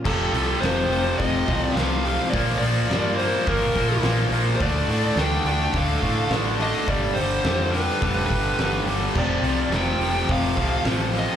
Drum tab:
CC |x-------|--------|--------|--------|
HH |-ooooooo|oooooooo|oooooooo|oooooooo|
SD |--o---oo|--o---o-|--o---o-|--o---o-|
BD |o---oo--|o---oo--|o---oo--|o---oo--|

CC |x-------|
HH |-ooooooo|
SD |--o---oo|
BD |o---oo--|